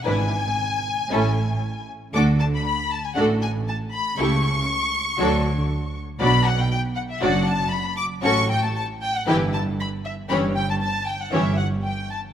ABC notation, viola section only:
X:1
M:4/4
L:1/8
Q:1/4=117
K:Dlyd
V:1 name="Viola section"
[E,D] z3 [A,C] z3 | [A,D] z3 [A,D] z3 | [A,E] z3 [F,D] z3 | [K:Bm] [F,D] z3 [F,D] z3 |
[F,C] z3 [E,E] z3 | [E,C] z3 [E,C] z3 |]